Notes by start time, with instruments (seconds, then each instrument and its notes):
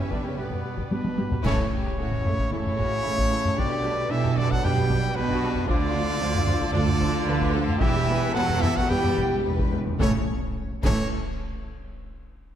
Already playing: cello section C#3, string section B3 E4 G4 B4, trumpet C#4, violin section B4 E5, flute C#5
0.08 double bass section E2, cello section D3, viola section G3 G4, french horn section D4, trumpet D4, violin section D5, flute D5, taiko
0.21 double bass section E2, cello section C#3, viola section G3 G4, french horn section C#4, trumpet C#4, violin section C#5, flute C#5
0.35 double bass section G2, cello section B2, trombone section D3 G3, viola section G3 G4, french horn section B3, trumpet B3, string section D4, violin section B4, flute B4
0.39 violin section D5
0.49 double bass section G2, viola section G3 G4, taiko low-mid
0.63 double bass section G2, viola section G3 G4
0.77 double bass section G2, viola section G3 G4, taiko
0.89 double bass section G2, trombone section B2, viola section G3 G4, french horn section B3, violin section D4, trumpet B4, taiko high
1.05 taiko high
1.18 double bass section G2, viola section G3 G4, taiko high
1.32 double bass section G2, viola section G3 G4, taiko low
1.43 double bass section A1, cello section A2, trombone section C#3, viola section E3 A3, string section A3 E4 A4 C#5, french horn section C#4, violin section E4 A4, trumpet C#5, concert bass drum, taiko, crash
1.72 viola section E3 A3, violin section G4
1.86 taiko rim
1.98 double bass section A1, cello section A2, viola section E3 A3, violin section F#4
2.12 taiko low-mid
2.25 viola section E3 A3, violin section E4, taiko low-mid
2.39 taiko
2.51 double bass section A1, cello section A2, trombone section C#3, viola section E3 A3, french horn section C#4, violin section E4 A4, trumpet C#5, taiko low-mid
2.66 taiko low-mid
2.78 viola section E3 A3, violin section F#4, taiko
3.05 double bass section A1, cello section A2, viola section E3 A3, violin section E4
3.18 taiko
3.30 viola section E3 A3, violin section A4
3.45 taiko low-mid
3.56 double bass section B1, cello section B2, trombone section D3, string section G3 B3 D4 B4, viola section G3 D4, french horn section D4, violin section G4, trumpet D5, taiko
3.84 viola section G3 D4, violin section B4
4.08 double bass section B1, cello section B2, trombone section E3, viola section G3 D4, french horn section E4, violin section G4 A4, trumpet E5
4.25 taiko low-mid
4.35 trombone section D3, viola section G3 D4, french horn section D4, violin section F#4, trumpet D5, taiko low-mid
4.48 trombone section F#3, french horn section F#4, violin section A4, trumpet F#5, taiko
4.62 double bass section B1, cello section B2, viola section G3 D4, trombone section G3, violin section G4 B4, french horn section G4, trumpet G5, taiko low-mid
4.77 taiko low-mid
4.89 viola section G3 D4, taiko
5.14 double bass section B1, trombone section B2, cello section B2, viola section G3 D4, french horn section B3, violin section D4 F#4, trumpet B4
5.29 taiko
5.41 viola section G3 D4
5.55 taiko low-mid
5.67 double bass section D2, cello section D2, trombone section D3, viola section F3 D4, string section A3 F4 A4 D5, french horn section D4, violin section F4, trumpet D5, taiko
5.94 viola section F3 D4
6.20 double bass section D2, cello section D2, viola section F3 D4
6.35 taiko low-mid
6.46 viola section F3 D4, taiko low-mid
6.61 taiko
6.71 double bass section D2, cello section D2, trombone section D3, viola section F3 D4, french horn section D4, violin section F4 A4, trumpet D5, taiko low-mid
6.88 taiko low-mid
7.00 viola section F3 D4, taiko
7.25 double bass section D2, cello section D2, viola section F3 D4, violin section B4
7.40 taiko
7.51 viola section F3 D4, violin section A4
7.68 taiko low-mid
7.79 double bass section E1, cello section E2, trombone section E3, viola section G3 B3, string section B3 E4 G4 B4, french horn section E4, violin section G4, trumpet E5, taiko
7.97 timpani E2
8.04 timpani E2, violin section B4
8.08 timpani E2, viola section G3 B3
8.19 timpani E2
8.27 timpani E2
8.33 double bass section E1, timpani E2, cello section E2, trombone section F#3, viola section G3 B3, french horn section F#4, violin section A4, trumpet F#5
8.43 timpani E2
8.49 timpani E2, taiko low-mid
8.58 timpani E2, trombone section E3, violin section G4, trumpet E5
8.63 timpani E2, viola section G3 B3, french horn section E4, taiko low-mid
8.73 timpani E2, trombone section F#3, french horn section F#4, violin section A4, trumpet F#5, taiko
8.80 timpani E2
8.88 double bass section E1, timpani E2, cello section E2, viola section G3 B3, trombone section G3, violin section G4 B4, french horn section G4, trumpet G5, taiko low-mid
8.97 timpani E2
9.03 timpani E2, taiko low-mid
9.10 timpani E2
9.17 timpani E2, viola section G3 B3, taiko
9.25 timpani E2
9.33 timpani E2
9.41 double bass section E1, timpani E2
9.45 cello section E2, viola section G3 B3, violin section B4
9.49 timpani E2
9.56 timpani E2, taiko
9.65 timpani E2
9.71 timpani E2, viola section G3 B3
9.79 timpani E2
9.86 timpani E2, taiko low-mid
9.99 double bass section A1, timpani A2, cello section A2, trombone section C#3, viola section E3 A3, string section A3 E4 A4 C#5, french horn section C#4, violin section C#4 A4, trumpet C#5, concert bass drum, snare, taiko
10.83 double bass section A1, timpani A2, cello section A2, viola section E3 A3, violin section C#4 A4, trumpet C#5, concert bass drum, taiko, crash